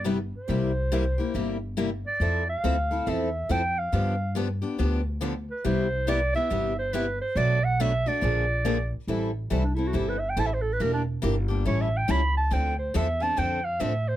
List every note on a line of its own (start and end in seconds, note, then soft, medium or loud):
0.00 0.32 G1 medium
0.04 0.16 C3 medium
0.04 0.17 G3 medium
0.04 0.17 B3 medium
0.04 0.17 E4 medium
0.04 0.17 G4 medium
0.36 1.59 C5 medium
0.49 1.18 C2 medium
0.49 0.70 C3 medium
0.49 0.70 G3 medium
0.49 0.71 A#3 medium
0.49 0.71 E4 medium
0.49 0.71 G4 medium
0.92 1.03 C3 medium
0.92 1.03 G3 medium
0.92 1.03 A#3 loud
0.92 1.03 E4 medium
0.92 1.04 G4 loud
1.18 1.34 A#3 soft
1.18 1.34 E4 medium
1.18 1.34 G4 medium
1.35 2.03 G1 medium
1.35 1.56 C3 medium
1.35 1.56 G3 medium
1.35 1.56 A#3 medium
1.35 1.56 E4 medium
1.35 1.57 G4 medium
1.77 1.88 C3 medium
1.77 1.89 G3 medium
1.77 1.89 A#3 medium
1.77 1.89 E4 medium
1.77 1.89 G4 medium
2.07 2.46 D5 medium
2.20 2.55 F2 medium
2.20 2.42 F3 medium
2.20 2.42 C4 medium
2.20 2.42 E4 medium
2.20 2.43 A4 medium
2.49 3.10 F5 medium
2.64 3.00 D2 medium
2.64 2.75 F3 medium
2.64 2.75 C4 loud
2.64 2.75 E4 medium
2.64 2.75 A4 medium
2.91 3.06 C4 medium
2.91 3.07 E4 medium
2.91 3.06 A4 medium
3.07 3.43 E2 medium
3.07 3.28 F3 medium
3.07 3.28 C4 medium
3.07 3.28 E4 medium
3.07 3.28 A4 medium
3.07 3.53 E5 medium
3.49 3.86 F2 medium
3.49 3.61 F3 medium
3.49 3.61 C4 medium
3.49 3.61 E4 medium
3.49 3.61 A4 loud
3.49 3.80 G5 loud
3.79 4.37 F5 medium
3.92 4.61 G2 medium
3.92 4.14 D3 medium
3.92 4.14 F3 medium
3.92 4.14 B3 medium
3.92 4.14 D4 medium
3.92 4.14 G4 medium
4.35 4.47 D3 medium
4.35 4.47 F3 medium
4.35 4.47 B3 medium
4.35 4.47 D4 medium
4.35 4.47 G4 loud
4.62 4.78 B3 soft
4.62 4.78 D4 medium
4.62 4.78 G4 medium
4.78 5.48 D2 medium
4.78 5.00 D3 medium
4.78 5.00 F3 medium
4.78 5.00 B3 medium
4.78 5.00 D4 medium
4.78 5.00 G4 medium
5.21 5.33 D3 medium
5.21 5.32 F3 medium
5.21 5.33 B3 medium
5.21 5.33 D4 medium
5.21 5.33 G4 medium
5.51 5.68 B4 medium
5.65 6.33 C2 medium
5.65 5.86 C3 medium
5.65 5.86 G3 medium
5.65 5.86 B3 medium
5.65 5.86 E4 medium
5.65 5.86 G4 medium
5.65 6.10 C5 medium
6.07 6.19 C3 medium
6.07 6.19 G3 medium
6.07 6.19 B3 medium
6.07 6.19 E4 loud
6.07 6.19 G4 loud
6.07 6.35 D5 medium
6.34 6.49 B3 medium
6.34 6.50 E4 medium
6.34 6.50 G4 medium
6.34 6.75 E5 loud
6.50 7.20 G1 medium
6.50 6.72 C3 medium
6.50 6.72 G3 medium
6.50 6.72 B3 medium
6.50 6.72 E4 medium
6.50 6.72 G4 medium
6.79 6.95 C5 medium
6.93 7.05 C3 medium
6.93 7.05 G3 medium
6.93 7.05 B3 medium
6.93 7.05 E4 loud
6.93 7.05 G4 medium
6.93 7.20 B4 medium
7.21 7.38 C5 medium
7.35 8.05 B1 medium
7.35 7.58 B2 medium
7.35 7.58 F#3 medium
7.35 7.58 A3 medium
7.35 7.58 D4 medium
7.35 7.58 F#4 medium
7.35 7.58 B4 medium
7.35 7.66 D5 loud
7.64 7.82 F#5 loud
7.80 7.91 B2 medium
7.80 7.91 F#3 loud
7.80 7.91 A3 medium
7.80 7.92 D4 medium
7.80 7.92 F#4 loud
7.80 7.92 B4 medium
7.80 8.10 E5 loud
8.06 8.22 A3 medium
8.06 8.21 D4 medium
8.06 8.22 F#4 medium
8.06 8.93 D5 medium
8.21 8.91 A#1 medium
8.21 8.43 D3 medium
8.21 8.44 F3 medium
8.21 8.44 A#3 medium
8.21 8.44 D4 medium
8.21 8.44 G#4 medium
8.65 8.77 D3 medium
8.65 8.77 F3 medium
8.65 8.77 A#3 medium
8.65 8.77 D4 loud
8.65 8.77 G#4 loud
9.07 9.50 A1 medium
9.07 9.30 E3 medium
9.07 9.30 G3 medium
9.07 9.30 C4 medium
9.07 9.30 E4 medium
9.07 9.30 A4 medium
9.50 9.93 C2 medium
9.50 9.62 E3 medium
9.50 9.62 G3 medium
9.50 9.62 C4 medium
9.50 9.62 E4 medium
9.50 9.62 A4 medium
9.64 9.76 D4 medium
9.75 9.93 C4 soft
9.75 9.88 E4 medium
9.75 9.93 E4 soft
9.75 9.93 A4 medium
9.87 9.98 F#4 medium
9.93 10.36 G1 medium
9.93 10.15 E3 medium
9.93 10.15 G3 medium
9.93 10.16 C4 medium
9.93 10.16 E4 medium
9.93 10.10 G4 medium
9.93 10.16 A4 medium
10.09 10.21 B4 medium
10.19 10.31 E5 medium
10.30 10.41 G5 medium
10.37 10.79 A1 medium
10.37 10.48 E3 medium
10.37 10.48 G3 medium
10.37 10.49 C4 medium
10.37 10.49 E4 loud
10.37 10.49 A4 medium
10.37 10.48 A5 loud
10.47 10.55 E5 medium
10.54 10.63 C5 medium
10.62 10.75 A4 medium
10.73 10.83 B4 medium
10.80 11.22 E1 medium
10.80 11.02 E3 medium
10.80 11.02 G3 medium
10.80 11.02 A#3 medium
10.80 11.02 D4 medium
10.80 11.02 E4 medium
10.80 11.02 G4 medium
10.80 11.02 A#4 medium
10.80 10.93 A#4 medium
10.93 11.02 D4 medium
11.22 11.65 G1 medium
11.22 11.34 E3 medium
11.22 11.35 G3 medium
11.22 11.34 A#3 medium
11.22 11.34 D4 loud
11.22 11.35 E4 medium
11.22 11.35 G4 loud
11.22 11.35 A#4 medium
11.48 11.65 A#3 medium
11.48 11.66 D4 medium
11.48 11.65 G4 medium
11.65 12.08 A1 medium
11.65 11.87 E3 medium
11.65 11.87 G3 medium
11.65 11.87 C#4 medium
11.65 11.88 E4 medium
11.65 11.88 A4 medium
11.65 11.83 C#5 medium
11.81 11.99 E5 medium
11.97 12.12 G5 medium
12.08 12.51 C#2 medium
12.08 12.20 E3 medium
12.08 12.20 G3 medium
12.08 12.20 C#4 medium
12.08 12.20 E4 medium
12.08 12.20 A4 loud
12.08 12.36 B5 loud
12.37 12.54 A5 medium
12.51 12.93 D2 medium
12.51 12.73 D3 medium
12.51 12.73 F3 medium
12.51 12.73 C4 medium
12.51 12.73 D4 medium
12.51 12.74 A4 medium
12.51 12.78 G5 medium
12.79 12.98 C5 medium
12.94 13.37 E2 medium
12.94 13.06 D3 medium
12.94 13.06 F3 medium
12.94 13.06 C4 medium
12.94 13.06 D4 loud
12.94 13.07 A4 loud
12.94 13.24 E5 medium
13.20 13.36 C4 medium
13.20 13.37 D4 medium
13.20 13.37 A4 medium
13.20 13.40 A5 loud
13.37 13.80 F2 medium
13.37 13.59 D3 medium
13.37 13.59 F3 medium
13.37 13.59 C4 medium
13.37 13.59 D4 medium
13.37 13.59 A4 medium
13.37 13.66 G5 medium
13.64 13.82 F5 loud
13.80 14.16 A2 medium
13.80 13.92 D3 medium
13.80 13.92 F3 medium
13.80 13.92 C4 medium
13.80 13.92 D4 medium
13.80 13.92 A4 medium
13.80 14.10 E5 medium
14.08 14.16 C5 medium